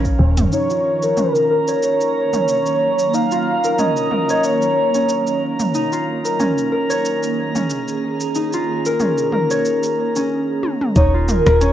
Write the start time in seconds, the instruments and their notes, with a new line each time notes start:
Already playing: fm bass A#1, ambient pad D#3 F3 C#4 A#4, harp C#4 D#4 F4 A#4 C#5
0.05 kick, shaker
0.19 fm bass D#1, tabla na, tabla tin
0.37 closed hi-hat, mid tom, tabla na, tabla ge, shaker
0.52 harp D#4, soft synth lead C#5, synth texture A#5, shaker
0.70 harp F4, shaker
0.86 ambient pad A#3
1.03 harp A#4, shaker
1.17 harp C#4, soft synth lead A#4, mid tom, shaker
1.35 shaker
1.50 harp A#4
1.68 harp C#5, shaker
1.83 soft synth lead C#5, shaker
1.96 ambient pad F#3
2.01 shaker
2.33 harp C#4, mid tom, shaker
2.48 soft synth lead C#5, shaker
2.66 shaker
2.99 shaker
3.14 harp D#4, soft synth lead F5, shaker
3.31 harp F4, shaker
3.64 harp A#4, shaker
3.79 harp C#4, soft synth lead D#5, mid tom, shaker
3.97 shaker
4.11 harp A#4, mid tom
4.29 harp C#5, shaker
4.44 soft synth lead C#5, shaker
4.62 shaker
4.95 harp C#4, shaker
5.09 shaker
5.27 shaker
5.60 mid tom, shaker
5.75 harp D#4, shaker
5.92 harp F4, shaker
6.25 harp A#4, shaker
6.39 harp C#4, mid tom, shaker
6.47 ambient pad G#4
6.58 shaker
6.72 harp A#4
6.90 harp C#5, shaker
7.05 shaker
7.23 shaker
7.55 harp C#4, mid tom, shaker
7.70 shaker
7.88 shaker
8.21 shaker
8.35 harp D#4, shaker
8.53 harp F4, shaker
8.86 harp A#4, shaker
9.00 harp C#4, mid tom, shaker
9.18 shaker
9.32 harp A#4, mid tom
9.51 harp C#5, shaker
9.65 shaker
9.83 shaker
10.16 harp C#4, shaker
10.63 high tom
10.81 mid tom
10.96 fm bass D#1, ambient pad D#3, harp D#4, soft synth lead C#5, synth texture G#5, kick, closed hi-hat, shaker
11.14 harp F4
11.29 soft synth lead A#4, mid tom, shaker
11.46 fm bass D#1, ambient pad F#3, harp A#4, cross-stick, closed hi-hat, shaker
11.61 harp C#4, soft synth lead C#5, closed hi-hat, shaker